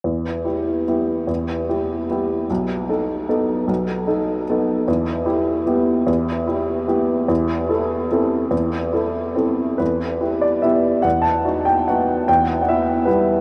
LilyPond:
\new Staff \with { instrumentName = "Upright piano" } { \time 3/4 \key e \minor \tempo 4 = 148 << { r2. | r2. | r2. | r2. |
r2. | r2. | r2. | r2. |
b'4. d''8 e''4 | fis''8 a''4 g''8 fis''4 | \tuplet 3/2 { g''4~ g''16 fis''16 } e''4 b'4 | } \\ { e,4 <e' g'>4 <b e' g'>4 | e,4 <e' g'>4 <b e' g'>4 | b,,4 <dis' a'>4 <b dis' a'>4 | b,,4 <dis' a'>4 <b dis' a'>4 |
e,4 <e' g'>4 <b e' g'>4 | e,4 <e' g'>4 <b e' g'>4 | e,4 <e' a'>4 <c' e' a'>4 | e,4 <e' a'>4 <c' e' a'>4 |
e,4 <e' g'>4 <b e' g'>4 | e,4 <dis' fis'>4 <b dis' fis'>4 | e,4 <b e'>4 <g b e'>4 | } >> }